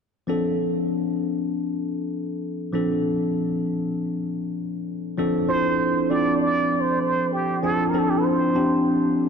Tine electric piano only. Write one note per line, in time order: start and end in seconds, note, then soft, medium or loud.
0.27 2.68 F3 medium
0.27 2.69 C4 medium
0.27 2.69 D4 medium
0.27 2.70 A4 medium
2.72 5.14 F3 medium
2.72 5.14 C4 medium
2.72 5.14 D4 medium
2.72 5.15 A4 medium
5.18 5.40 F3 medium
5.18 5.40 C4 medium
5.18 5.40 D4 medium
5.18 5.41 A4 loud
5.48 5.89 F3 medium
5.48 5.89 C4 medium
5.48 5.90 D4 medium
5.48 5.90 E4 medium
6.10 6.91 F3 medium
6.10 6.91 C4 medium
6.10 6.91 D4 medium
6.10 6.91 A4 medium
7.63 7.85 F3 medium
7.63 7.85 C4 medium
7.63 7.85 D4 medium
7.63 7.85 F4 medium
7.93 8.34 F3 medium
7.93 8.34 C4 medium
7.93 8.34 D4 medium
7.93 8.35 A4 medium
8.55 9.29 F3 medium
8.55 9.29 C4 medium
8.55 9.29 D4 medium
8.55 9.29 G4 medium